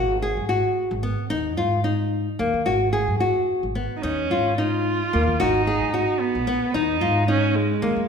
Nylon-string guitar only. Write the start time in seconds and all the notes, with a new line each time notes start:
Already playing: F#4
0.22 G#4
0.49 F#4
1.03 B3
1.30 D#4
1.57 F4
1.84 D#4
2.39 A#3
2.66 F#4
2.93 G#4
3.20 F#4
3.75 B3
4.03 D#4
4.31 F4
4.58 D#4
5.13 A#3
5.40 F#4
5.67 G#4
5.94 F#4
6.47 B3
6.74 D#4
7.01 F4
7.28 D#4
7.82 A#3